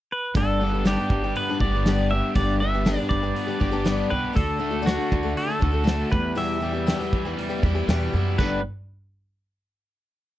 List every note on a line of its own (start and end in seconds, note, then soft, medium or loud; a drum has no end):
0.12 0.35 B4 medium
0.35 0.94 G1 medium
0.35 0.60 G2 medium
0.35 0.61 D3 medium
0.35 0.59 G3 medium
0.35 0.60 B3 medium
0.35 0.60 D4 medium
0.35 0.61 G4 medium
0.35 0.88 A4 medium
0.35 kick loud
0.35 open hi-hat soft
0.60 0.73 G3 medium
0.60 0.73 B3 medium
0.60 0.73 D4 medium
0.60 0.71 G4 medium
0.72 0.85 G3 soft
0.72 0.85 B3 soft
0.72 0.85 D4 soft
0.72 0.85 G4 medium
0.85 0.97 G2 medium
0.85 0.98 D3 medium
0.85 0.98 G3 medium
0.85 0.97 B3 medium
0.85 0.97 D4 medium
0.85 0.97 G4 medium
0.85 1.38 G4 medium
0.85 snare medium
0.85 open hi-hat medium
0.98 1.24 G3 soft
0.98 1.23 B3 soft
0.98 1.23 D4 soft
0.98 1.22 G4 soft
1.10 1.30 G1 medium
1.10 2.35 G3 medium
1.10 kick medium
1.23 1.49 G3 soft
1.23 1.49 B3 soft
1.23 1.48 D4 soft
1.23 1.48 G4 soft
1.35 1.84 B3 medium
1.35 1.61 B4 medium
1.35 open hi-hat soft
1.50 1.61 G3 soft
1.50 1.62 B3 soft
1.50 1.61 D4 soft
1.50 1.61 G4 soft
1.60 2.19 G1 medium
1.60 1.74 G3 medium
1.60 1.74 B3 medium
1.60 2.07 D5 medium
1.60 kick medium
1.64 1.74 D4 medium
1.64 1.73 G4 medium
1.75 1.86 G3 soft
1.75 1.86 B3 soft
1.75 1.86 D4 soft
1.75 1.86 G4 soft
1.86 2.11 G2 medium
1.86 2.11 D3 medium
1.86 2.10 G3 medium
1.86 2.11 B3 medium
1.86 2.11 D4 medium
1.86 2.11 G4 medium
1.86 snare loud
1.86 open hi-hat soft
2.10 2.36 G3 soft
2.10 2.36 B3 medium
2.10 2.37 D4 medium
2.10 3.36 G4 medium
2.10 2.34 E5 medium
2.15 2.38 G4 medium
2.35 2.95 G1 medium
2.35 2.61 G2 medium
2.35 2.62 D3 medium
2.35 2.58 G3 medium
2.35 2.60 B3 medium
2.35 2.61 D4 medium
2.35 2.61 G4 medium
2.35 2.60 D5 medium
2.35 kick loud
2.35 open hi-hat soft
2.59 2.72 G3 medium
2.59 2.73 B3 medium
2.59 2.74 D4 medium
2.59 2.72 G4 medium
2.59 3.07 E5 loud
2.74 2.85 G3 soft
2.74 2.85 B3 soft
2.74 2.85 D4 soft
2.74 2.86 G4 medium
2.85 2.98 G2 medium
2.85 2.98 D3 medium
2.85 2.98 G3 medium
2.85 2.98 B3 medium
2.85 2.97 D4 medium
2.85 2.97 G4 medium
2.85 snare loud
2.85 open hi-hat soft
2.98 3.23 G3 soft
2.98 3.22 B3 soft
2.98 3.22 D4 soft
2.98 3.21 G4 soft
3.09 3.31 G1 medium
3.09 4.35 G3 medium
3.09 4.13 D5 medium
3.09 kick medium
3.23 3.48 G3 soft
3.23 3.47 B3 soft
3.23 3.47 D4 soft
3.23 3.46 G4 medium
3.35 3.85 B3 medium
3.35 open hi-hat soft
3.47 3.59 G3 soft
3.47 3.59 B3 soft
3.47 3.59 D4 soft
3.47 3.60 G4 soft
3.60 4.01 G1 medium
3.60 3.73 G3 medium
3.60 3.72 B3 medium
3.60 3.71 D4 medium
3.60 3.70 G4 medium
3.60 kick medium
3.71 3.84 G3 soft
3.71 3.84 B3 medium
3.71 3.85 D4 medium
3.71 3.85 G4 medium
3.84 4.10 G2 medium
3.84 4.10 D3 medium
3.84 4.08 G3 medium
3.84 4.09 B3 medium
3.84 4.10 D4 medium
3.84 4.10 G4 medium
3.84 snare loud
3.84 open hi-hat soft
4.10 4.21 C2 medium
4.10 4.33 G3 soft
4.10 4.34 B3 soft
4.10 4.33 D4 medium
4.10 4.35 G4 medium
4.10 4.34 B4 medium
4.33 4.96 D2 medium
4.33 4.58 D3 medium
4.33 4.58 A3 medium
4.33 4.58 D4 medium
4.33 4.59 F#4 medium
4.33 4.88 A4 medium
4.33 kick loud
4.33 open hi-hat soft
4.59 4.73 D3 medium
4.59 4.71 A3 medium
4.59 4.70 D4 medium
4.59 4.69 F#4 medium
4.70 4.82 A3 soft
4.70 4.81 D4 medium
4.70 4.82 F#4 soft
4.82 4.97 D3 medium
4.82 4.97 A3 medium
4.82 4.96 D4 medium
4.82 4.95 F#4 medium
4.86 6.13 D4 medium
4.86 5.33 F#4 medium
4.86 snare loud
4.86 open hi-hat soft
4.96 5.23 A3 soft
4.96 5.22 D4 soft
4.96 5.21 F#4 soft
5.12 5.32 D2 loud
5.12 6.13 D3 medium
5.12 kick medium
5.23 5.48 A3 soft
5.23 5.46 D4 soft
5.23 5.46 F#4 soft
5.37 5.87 A3 medium
5.37 6.11 A4 medium
5.37 open hi-hat soft
5.47 5.59 A3 soft
5.47 5.60 D4 soft
5.47 5.60 F#4 medium
5.59 6.02 D2 medium
5.59 5.73 D3 medium
5.59 5.72 A3 soft
5.59 5.71 D4 medium
5.59 5.70 F#4 medium
5.59 kick medium
5.71 5.83 A3 soft
5.71 5.83 D4 soft
5.71 5.84 F#4 medium
5.84 6.09 D3 medium
5.84 6.10 A3 medium
5.84 6.10 D4 medium
5.84 6.11 F#4 medium
5.84 snare loud
5.84 open hi-hat soft
6.10 6.92 E2 medium
6.10 6.36 E2 medium
6.10 6.34 E3 medium
6.10 6.35 G3 medium
6.10 6.35 B3 medium
6.10 6.36 G4 medium
6.10 6.38 B4 medium
6.10 kick loud
6.35 6.62 E2 medium
6.35 6.61 B2 medium
6.35 6.59 E3 medium
6.35 6.59 G3 medium
6.35 6.60 B3 medium
6.35 6.61 G4 medium
6.35 7.84 E5 medium
6.35 open hi-hat soft
6.60 6.74 E3 medium
6.60 6.74 G3 medium
6.60 6.73 B3 medium
6.60 6.72 G4 medium
6.73 6.86 E3 soft
6.73 6.86 G3 medium
6.73 6.86 B3 soft
6.73 6.87 G4 medium
6.86 7.00 E2 medium
6.86 7.00 B2 medium
6.86 7.00 E3 medium
6.86 6.99 G3 medium
6.86 6.99 B3 medium
6.86 6.98 G4 medium
6.86 snare medium
6.86 open hi-hat medium
6.99 7.26 E3 soft
6.99 7.25 G3 soft
6.99 7.25 B3 medium
6.99 7.24 G4 medium
7.12 7.33 E2 medium
7.12 8.37 E3 medium
7.12 kick medium
7.25 7.49 E3 soft
7.25 7.49 G3 medium
7.25 7.48 B3 medium
7.25 7.48 G4 medium
7.37 7.86 G3 medium
7.37 open hi-hat soft
7.49 7.61 E3 soft
7.49 7.62 G3 medium
7.49 7.63 B3 medium
7.49 7.62 G4 medium
7.62 7.83 E2 medium
7.62 7.75 E3 medium
7.62 7.76 G3 medium
7.62 7.75 B3 medium
7.62 8.12 E4 medium
7.62 7.74 G4 medium
7.62 kick medium
7.75 7.88 E3 soft
7.75 7.89 G3 medium
7.75 7.89 B3 soft
7.75 7.88 G4 medium
7.88 8.11 E2 medium
7.88 8.14 E2 medium
7.88 8.13 B2 medium
7.88 8.12 E3 medium
7.88 8.14 G3 medium
7.88 8.14 B3 loud
7.88 8.14 G4 medium
7.88 snare loud
7.88 open hi-hat soft
8.13 8.36 F#2 medium
8.13 8.39 E3 medium
8.13 8.39 G3 medium
8.13 8.39 B3 medium
8.13 8.38 E4 medium
8.13 8.40 G4 medium
8.38 8.62 G1 medium
8.38 8.58 G2 medium
8.38 8.59 D3 medium
8.38 8.59 G3 medium
8.38 8.59 B3 medium
8.38 8.60 D4 medium
8.38 8.60 G4 medium
8.38 8.62 B4 medium
8.38 8.59 B4 medium
8.38 kick medium
8.38 china medium